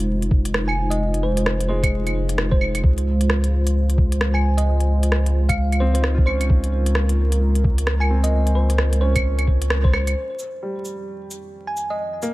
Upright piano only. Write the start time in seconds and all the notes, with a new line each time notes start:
1.69 G#3
5.81 C4
6.00 D#4
6.14 F4
6.27 C#4
8.10 C4
9.02 C#4
10.63 G3
12.22 A#3